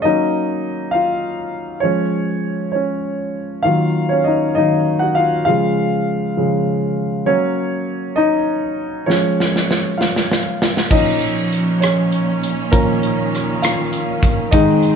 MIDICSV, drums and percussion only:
0, 0, Header, 1, 2, 480
1, 0, Start_track
1, 0, Tempo, 603622
1, 27, Time_signature, 6, 3, 24, 8
1, 11894, End_track
2, 0, Start_track
2, 0, Title_t, "Drums"
2, 7236, Note_on_c, 9, 38, 42
2, 7315, Note_off_c, 9, 38, 0
2, 7477, Note_on_c, 9, 38, 41
2, 7557, Note_off_c, 9, 38, 0
2, 7601, Note_on_c, 9, 38, 44
2, 7681, Note_off_c, 9, 38, 0
2, 7719, Note_on_c, 9, 38, 56
2, 7798, Note_off_c, 9, 38, 0
2, 7959, Note_on_c, 9, 38, 55
2, 8039, Note_off_c, 9, 38, 0
2, 8082, Note_on_c, 9, 38, 52
2, 8162, Note_off_c, 9, 38, 0
2, 8202, Note_on_c, 9, 38, 67
2, 8282, Note_off_c, 9, 38, 0
2, 8444, Note_on_c, 9, 38, 79
2, 8524, Note_off_c, 9, 38, 0
2, 8565, Note_on_c, 9, 38, 62
2, 8644, Note_off_c, 9, 38, 0
2, 8673, Note_on_c, 9, 49, 59
2, 8674, Note_on_c, 9, 36, 82
2, 8753, Note_off_c, 9, 36, 0
2, 8753, Note_off_c, 9, 49, 0
2, 8914, Note_on_c, 9, 42, 31
2, 8993, Note_off_c, 9, 42, 0
2, 9165, Note_on_c, 9, 42, 39
2, 9244, Note_off_c, 9, 42, 0
2, 9401, Note_on_c, 9, 42, 62
2, 9412, Note_on_c, 9, 37, 73
2, 9481, Note_off_c, 9, 42, 0
2, 9491, Note_off_c, 9, 37, 0
2, 9639, Note_on_c, 9, 42, 34
2, 9719, Note_off_c, 9, 42, 0
2, 9888, Note_on_c, 9, 42, 44
2, 9968, Note_off_c, 9, 42, 0
2, 10120, Note_on_c, 9, 36, 80
2, 10121, Note_on_c, 9, 42, 67
2, 10200, Note_off_c, 9, 36, 0
2, 10201, Note_off_c, 9, 42, 0
2, 10363, Note_on_c, 9, 42, 33
2, 10443, Note_off_c, 9, 42, 0
2, 10613, Note_on_c, 9, 42, 37
2, 10621, Note_on_c, 9, 37, 26
2, 10692, Note_off_c, 9, 42, 0
2, 10700, Note_off_c, 9, 37, 0
2, 10841, Note_on_c, 9, 42, 75
2, 10852, Note_on_c, 9, 37, 83
2, 10921, Note_off_c, 9, 42, 0
2, 10932, Note_off_c, 9, 37, 0
2, 11076, Note_on_c, 9, 42, 38
2, 11155, Note_off_c, 9, 42, 0
2, 11313, Note_on_c, 9, 36, 74
2, 11321, Note_on_c, 9, 42, 46
2, 11393, Note_off_c, 9, 36, 0
2, 11400, Note_off_c, 9, 42, 0
2, 11549, Note_on_c, 9, 42, 69
2, 11551, Note_on_c, 9, 36, 89
2, 11629, Note_off_c, 9, 42, 0
2, 11631, Note_off_c, 9, 36, 0
2, 11789, Note_on_c, 9, 42, 34
2, 11869, Note_off_c, 9, 42, 0
2, 11894, End_track
0, 0, End_of_file